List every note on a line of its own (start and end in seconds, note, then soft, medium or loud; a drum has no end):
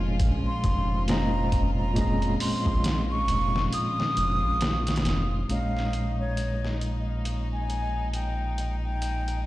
0.00 0.22 F1 loud
0.00 1.02 A#2 loud
0.00 5.51 F3 medium
0.00 1.03 G#3 medium
0.00 1.04 C#4 medium
0.00 5.52 C#4 medium
0.00 5.52 F4 medium
0.00 1.05 C5 medium
0.00 1.06 D#5 loud
0.20 0.42 A#1 loud
0.20 kick loud
0.20 closed hi-hat medium
0.47 1.03 C6 loud
0.64 2.37 F1 medium
0.64 kick medium
0.64 closed hi-hat medium
1.07 1.91 A#2 medium
1.07 1.92 G#3 medium
1.07 1.92 C#4 medium
1.07 1.92 C5 medium
1.07 1.93 D#5 loud
1.07 1.71 A#5 loud
1.07 snare loud
1.07 closed hi-hat medium
1.52 kick loud
1.52 closed hi-hat medium
1.79 2.35 A#5 medium
1.93 4.55 A#2 medium
1.93 4.56 G#3 medium
1.93 4.57 C#4 medium
1.93 kick loud
1.93 closed hi-hat medium
1.99 4.58 C4 medium
1.99 4.59 D#5 loud
2.22 closed hi-hat soft
2.40 3.03 C6 loud
2.40 open hi-hat medium
2.66 3.25 A#1 loud
2.66 kick loud
2.84 snare loud
2.84 closed hi-hat medium
3.11 3.68 C#6 loud
3.28 3.68 F1 loud
3.28 closed hi-hat medium
3.56 snare soft
3.73 5.35 D#6 loud
3.73 closed hi-hat medium
4.00 snare soft
4.17 4.45 F1 loud
4.17 closed hi-hat medium
4.43 5.02 A#1 medium
4.61 snare loud
4.61 closed hi-hat medium
4.87 snare medium
4.87 closed hi-hat medium
4.96 snare medium
4.96 closed hi-hat medium
5.05 5.45 F1 medium
5.05 snare loud
5.05 closed hi-hat medium
5.46 9.46 A#2 medium
5.46 9.46 G#3 medium
5.46 9.46 D#4 medium
5.46 9.46 D#5 medium
5.46 closed hi-hat medium
5.50 9.46 A#1 medium
5.50 9.46 C#4 medium
5.50 9.46 C#5 medium
5.50 9.46 D#5 medium
5.50 6.12 F5 medium
5.77 snare soft
5.93 closed hi-hat medium
6.20 6.76 C#5 medium
6.37 closed hi-hat medium
6.65 snare soft
6.81 closed hi-hat medium
7.25 closed hi-hat medium
7.53 8.09 G#5 medium
7.70 closed hi-hat medium
8.14 8.76 G5 medium
8.14 closed hi-hat medium
8.58 closed hi-hat medium
8.85 9.41 G5 medium
9.02 closed hi-hat medium
9.28 closed hi-hat soft